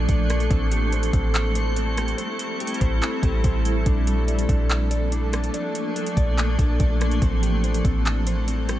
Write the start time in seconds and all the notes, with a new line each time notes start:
Already playing: F3 A3 A#3 D4 A4
0.08 A#1 D5, kick, closed hi-hat
0.30 cross-stick, closed hi-hat
0.40 closed hi-hat
0.51 A1 G3 C4 E4, kick, closed hi-hat
0.71 G4, closed hi-hat
0.92 C5, closed hi-hat
1.03 closed hi-hat
1.13 A1 C4, kick, closed hi-hat
1.35 clap, closed hi-hat
1.55 C5, closed hi-hat
1.76 C4, closed hi-hat
1.97 G4, cross-stick, closed hi-hat
2.08 closed hi-hat
2.18 C5, closed hi-hat
2.39 closed hi-hat
2.60 G4, closed hi-hat
2.67 closed hi-hat
2.74 closed hi-hat
2.81 A1 C5, kick, closed hi-hat
3.02 C4, clap, closed hi-hat
3.23 A1 G4, kick, closed hi-hat
3.44 A1 C5, kick, closed hi-hat
3.65 closed hi-hat
3.86 A#1 F3 A3 A#3 D4, kick, closed hi-hat
4.07 A4, closed hi-hat
4.28 D5, closed hi-hat
4.39 closed hi-hat
4.49 A#1 D4, kick, closed hi-hat
4.70 clap, closed hi-hat
4.91 D5, closed hi-hat
5.12 D4, closed hi-hat
5.33 A4, cross-stick, closed hi-hat
5.44 closed hi-hat
5.54 D5, closed hi-hat
5.75 closed hi-hat
5.96 A4, closed hi-hat
6.07 closed hi-hat
6.17 A#1 D5, kick, closed hi-hat
6.38 D4, clap, closed hi-hat
6.59 A#1 A4, kick, closed hi-hat
6.80 A#1 D5, kick, closed hi-hat
7.01 cross-stick, closed hi-hat
7.11 closed hi-hat
7.22 A1 G3 A3 C4 E4 A4, kick, closed hi-hat
7.43 G4, closed hi-hat
7.64 C5, closed hi-hat
7.74 closed hi-hat
7.85 A1 C4, kick, closed hi-hat
8.06 clap, closed hi-hat
8.27 C5, closed hi-hat
8.48 C4, closed hi-hat
8.69 G4, cross-stick, closed hi-hat